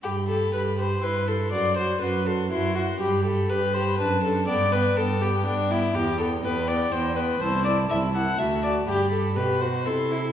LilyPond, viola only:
\new Staff \with { instrumentName = "Viola" } { \time 3/4 \key g \major \tempo 4 = 122 g'8 g'8 g'8 g'8 e'8 e'8 | fis'8 fis'8 fis'8 fis'8 fis'8 fis'8 | g'8 g'8 g'8 g'8 d'8 d'8 | b8 b8 b8 b8 b8 b8 |
b8 b8 b8 b8 b8 b8 | e'8 e'8 e'8 e'8 fis'8 fis'8 | g'4 g'8 fis'8 e'4 | }